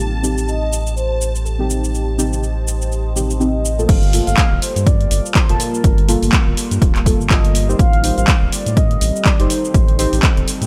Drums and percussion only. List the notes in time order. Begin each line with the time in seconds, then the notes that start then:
0.00 shaker
0.24 shaker
0.38 shaker
0.48 shaker
0.73 shaker
0.87 shaker
0.97 shaker
1.21 shaker
1.35 shaker
1.46 shaker
1.70 shaker
1.84 shaker
1.95 shaker
2.19 shaker
2.33 shaker
2.43 shaker
2.68 shaker
2.82 shaker
2.92 shaker
3.16 shaker
3.30 shaker
3.41 shaker
3.65 shaker
3.79 shaker
3.89 kick, closed hi-hat, crash, shaker
4.03 closed hi-hat
4.13 open hi-hat, shaker
4.27 closed hi-hat, shaker
4.37 kick, clap, closed hi-hat, shaker
4.62 open hi-hat, shaker
4.76 closed hi-hat, shaker
4.87 kick, closed hi-hat, shaker
5.01 closed hi-hat
5.11 open hi-hat, shaker
5.26 shaker
5.35 kick, clap, closed hi-hat, shaker
5.49 closed hi-hat
5.60 open hi-hat, shaker
5.74 shaker
5.84 kick, closed hi-hat, shaker
5.98 closed hi-hat
6.09 open hi-hat, shaker
6.23 open hi-hat, shaker
6.33 kick, clap, closed hi-hat, shaker
6.57 open hi-hat, shaker
6.71 closed hi-hat, shaker
6.82 kick, closed hi-hat, shaker
6.96 clap, closed hi-hat
7.06 kick, open hi-hat, shaker
7.21 shaker
7.30 kick, clap, closed hi-hat, shaker
7.45 closed hi-hat
7.55 open hi-hat, shaker
7.70 shaker
7.79 kick, closed hi-hat, shaker
7.93 closed hi-hat
8.04 open hi-hat, shaker
8.18 closed hi-hat, shaker
8.28 kick, clap, closed hi-hat, shaker
8.52 open hi-hat, shaker
8.66 closed hi-hat, shaker
8.77 kick, closed hi-hat, shaker
8.91 closed hi-hat
9.01 open hi-hat, shaker
9.16 shaker
9.25 kick, clap, closed hi-hat, shaker
9.40 closed hi-hat
9.50 open hi-hat, shaker
9.65 shaker
9.74 kick, closed hi-hat, shaker
9.88 closed hi-hat
9.99 open hi-hat, shaker
10.13 open hi-hat, shaker
10.23 kick, clap, closed hi-hat, shaker
10.37 closed hi-hat
10.48 open hi-hat, shaker
10.62 closed hi-hat, shaker